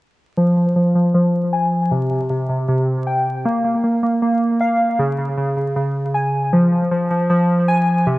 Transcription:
0, 0, Header, 1, 2, 480
1, 0, Start_track
1, 0, Key_signature, -4, "minor"
1, 0, Tempo, 384615
1, 467, Time_signature, 4, 2, 24, 8
1, 10217, End_track
2, 0, Start_track
2, 0, Title_t, "Synth keys"
2, 0, Program_c, 0, 88
2, 466, Note_on_c, 0, 53, 89
2, 691, Note_off_c, 0, 53, 0
2, 706, Note_on_c, 0, 53, 68
2, 932, Note_off_c, 0, 53, 0
2, 947, Note_on_c, 0, 53, 76
2, 1171, Note_off_c, 0, 53, 0
2, 1186, Note_on_c, 0, 53, 76
2, 1412, Note_off_c, 0, 53, 0
2, 1427, Note_on_c, 0, 53, 92
2, 1907, Note_on_c, 0, 80, 97
2, 2387, Note_off_c, 0, 53, 0
2, 2387, Note_off_c, 0, 80, 0
2, 2387, Note_on_c, 0, 48, 95
2, 2612, Note_off_c, 0, 48, 0
2, 2627, Note_on_c, 0, 48, 75
2, 2853, Note_off_c, 0, 48, 0
2, 2868, Note_on_c, 0, 48, 81
2, 3093, Note_off_c, 0, 48, 0
2, 3108, Note_on_c, 0, 48, 76
2, 3333, Note_off_c, 0, 48, 0
2, 3348, Note_on_c, 0, 48, 90
2, 3828, Note_on_c, 0, 79, 89
2, 4307, Note_on_c, 0, 58, 95
2, 4308, Note_off_c, 0, 48, 0
2, 4308, Note_off_c, 0, 79, 0
2, 4531, Note_off_c, 0, 58, 0
2, 4546, Note_on_c, 0, 58, 79
2, 4772, Note_off_c, 0, 58, 0
2, 4787, Note_on_c, 0, 58, 76
2, 5012, Note_off_c, 0, 58, 0
2, 5027, Note_on_c, 0, 58, 77
2, 5252, Note_off_c, 0, 58, 0
2, 5267, Note_on_c, 0, 58, 87
2, 5748, Note_on_c, 0, 77, 98
2, 6227, Note_off_c, 0, 58, 0
2, 6227, Note_on_c, 0, 49, 88
2, 6228, Note_off_c, 0, 77, 0
2, 6452, Note_off_c, 0, 49, 0
2, 6467, Note_on_c, 0, 49, 76
2, 6692, Note_off_c, 0, 49, 0
2, 6707, Note_on_c, 0, 49, 83
2, 6933, Note_off_c, 0, 49, 0
2, 6948, Note_on_c, 0, 49, 70
2, 7173, Note_off_c, 0, 49, 0
2, 7188, Note_on_c, 0, 49, 85
2, 7667, Note_on_c, 0, 80, 83
2, 8147, Note_off_c, 0, 80, 0
2, 8147, Note_on_c, 0, 53, 88
2, 8148, Note_off_c, 0, 49, 0
2, 8373, Note_off_c, 0, 53, 0
2, 8388, Note_on_c, 0, 53, 68
2, 8612, Note_off_c, 0, 53, 0
2, 8627, Note_on_c, 0, 53, 79
2, 8852, Note_off_c, 0, 53, 0
2, 8867, Note_on_c, 0, 53, 75
2, 9092, Note_off_c, 0, 53, 0
2, 9107, Note_on_c, 0, 53, 88
2, 9587, Note_on_c, 0, 80, 99
2, 10066, Note_on_c, 0, 48, 93
2, 10067, Note_off_c, 0, 53, 0
2, 10067, Note_off_c, 0, 80, 0
2, 10217, Note_off_c, 0, 48, 0
2, 10217, End_track
0, 0, End_of_file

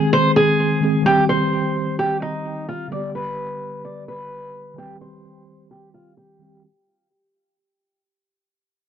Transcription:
0, 0, Header, 1, 3, 480
1, 0, Start_track
1, 0, Key_signature, -3, "minor"
1, 0, Tempo, 465116
1, 1091, Time_signature, 4, 2, 24, 8
1, 9171, End_track
2, 0, Start_track
2, 0, Title_t, "Steel-string acoustic guitar"
2, 0, Program_c, 0, 25
2, 133, Note_on_c, 0, 72, 82
2, 314, Note_off_c, 0, 72, 0
2, 373, Note_on_c, 0, 68, 68
2, 1051, Note_off_c, 0, 68, 0
2, 1093, Note_on_c, 0, 67, 98
2, 1274, Note_off_c, 0, 67, 0
2, 1333, Note_on_c, 0, 72, 80
2, 2011, Note_off_c, 0, 72, 0
2, 2053, Note_on_c, 0, 67, 87
2, 2234, Note_off_c, 0, 67, 0
2, 2291, Note_on_c, 0, 63, 81
2, 2742, Note_off_c, 0, 63, 0
2, 2772, Note_on_c, 0, 65, 77
2, 2953, Note_off_c, 0, 65, 0
2, 3011, Note_on_c, 0, 74, 79
2, 3193, Note_off_c, 0, 74, 0
2, 3251, Note_on_c, 0, 71, 84
2, 3930, Note_off_c, 0, 71, 0
2, 3970, Note_on_c, 0, 74, 71
2, 4152, Note_off_c, 0, 74, 0
2, 4213, Note_on_c, 0, 71, 81
2, 4891, Note_off_c, 0, 71, 0
2, 4935, Note_on_c, 0, 67, 101
2, 5115, Note_off_c, 0, 67, 0
2, 5172, Note_on_c, 0, 72, 77
2, 5851, Note_off_c, 0, 72, 0
2, 5891, Note_on_c, 0, 67, 82
2, 6073, Note_off_c, 0, 67, 0
2, 6130, Note_on_c, 0, 65, 80
2, 6313, Note_off_c, 0, 65, 0
2, 6369, Note_on_c, 0, 67, 68
2, 6821, Note_off_c, 0, 67, 0
2, 9171, End_track
3, 0, Start_track
3, 0, Title_t, "Tine electric piano"
3, 0, Program_c, 1, 4
3, 0, Control_c, 1, 64, 127
3, 0, Note_on_c, 1, 51, 65
3, 0, Note_on_c, 1, 56, 60
3, 0, Note_on_c, 1, 60, 64
3, 0, Note_on_c, 1, 68, 75
3, 797, Note_off_c, 1, 51, 0
3, 811, Note_off_c, 1, 56, 0
3, 824, Note_off_c, 1, 60, 0
3, 832, Note_on_c, 1, 51, 51
3, 838, Note_off_c, 1, 68, 0
3, 845, Note_on_c, 1, 56, 42
3, 859, Note_on_c, 1, 60, 43
3, 872, Note_on_c, 1, 68, 50
3, 1039, Note_off_c, 1, 51, 0
3, 1052, Note_on_c, 1, 51, 66
3, 1079, Note_on_c, 1, 55, 62
3, 1088, Note_off_c, 1, 56, 0
3, 1095, Note_off_c, 1, 60, 0
3, 1102, Note_off_c, 1, 68, 0
3, 1106, Control_c, 1, 64, 0
3, 1106, Note_on_c, 1, 60, 67
3, 1133, Note_on_c, 1, 67, 70
3, 1296, Control_c, 1, 64, 127
3, 2953, Note_off_c, 1, 51, 0
3, 2966, Note_off_c, 1, 55, 0
3, 2971, Note_on_c, 1, 50, 71
3, 2980, Note_off_c, 1, 60, 0
3, 2994, Note_off_c, 1, 67, 0
3, 2997, Note_on_c, 1, 55, 59
3, 3022, Control_c, 1, 64, 0
3, 3024, Note_on_c, 1, 59, 63
3, 3051, Note_on_c, 1, 67, 80
3, 3226, Control_c, 1, 64, 127
3, 4872, Note_off_c, 1, 50, 0
3, 4886, Note_off_c, 1, 55, 0
3, 4891, Note_on_c, 1, 51, 70
3, 4900, Note_off_c, 1, 59, 0
3, 4913, Note_off_c, 1, 67, 0
3, 4917, Note_on_c, 1, 55, 65
3, 4944, Note_on_c, 1, 60, 66
3, 4946, Control_c, 1, 64, 0
3, 4971, Note_on_c, 1, 67, 79
3, 5096, Control_c, 1, 64, 127
3, 6557, Note_off_c, 1, 51, 0
3, 6571, Note_off_c, 1, 55, 0
3, 6584, Note_off_c, 1, 60, 0
3, 6591, Note_on_c, 1, 51, 49
3, 6598, Note_off_c, 1, 67, 0
3, 6605, Note_on_c, 1, 55, 46
3, 6618, Note_on_c, 1, 60, 44
3, 6631, Note_on_c, 1, 67, 52
3, 6841, Note_off_c, 1, 51, 0
3, 6848, Note_off_c, 1, 55, 0
3, 6855, Note_off_c, 1, 60, 0
3, 6861, Note_off_c, 1, 67, 0
3, 6866, Control_c, 1, 64, 0
3, 9171, End_track
0, 0, End_of_file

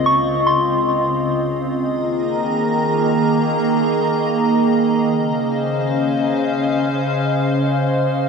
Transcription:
0, 0, Header, 1, 3, 480
1, 0, Start_track
1, 0, Tempo, 500000
1, 7956, End_track
2, 0, Start_track
2, 0, Title_t, "Synth bell"
2, 0, Program_c, 0, 98
2, 58, Note_on_c, 0, 85, 94
2, 429, Note_off_c, 0, 85, 0
2, 448, Note_on_c, 0, 84, 83
2, 1205, Note_off_c, 0, 84, 0
2, 7956, End_track
3, 0, Start_track
3, 0, Title_t, "Ambient pad"
3, 0, Program_c, 1, 92
3, 0, Note_on_c, 1, 37, 82
3, 0, Note_on_c, 1, 49, 74
3, 0, Note_on_c, 1, 60, 74
3, 0, Note_on_c, 1, 65, 76
3, 0, Note_on_c, 1, 75, 91
3, 1610, Note_off_c, 1, 37, 0
3, 1610, Note_off_c, 1, 49, 0
3, 1610, Note_off_c, 1, 60, 0
3, 1610, Note_off_c, 1, 65, 0
3, 1610, Note_off_c, 1, 75, 0
3, 1642, Note_on_c, 1, 51, 82
3, 1642, Note_on_c, 1, 58, 74
3, 1642, Note_on_c, 1, 68, 75
3, 1642, Note_on_c, 1, 75, 77
3, 1643, Note_on_c, 1, 82, 89
3, 4788, Note_off_c, 1, 51, 0
3, 4788, Note_off_c, 1, 58, 0
3, 4788, Note_off_c, 1, 68, 0
3, 4788, Note_off_c, 1, 82, 0
3, 4818, Note_on_c, 1, 49, 80
3, 4818, Note_on_c, 1, 61, 78
3, 4818, Note_on_c, 1, 72, 76
3, 4818, Note_on_c, 1, 77, 89
3, 7956, Note_off_c, 1, 49, 0
3, 7956, Note_off_c, 1, 61, 0
3, 7956, Note_off_c, 1, 72, 0
3, 7956, Note_off_c, 1, 75, 0
3, 7956, Note_off_c, 1, 77, 0
3, 7956, End_track
0, 0, End_of_file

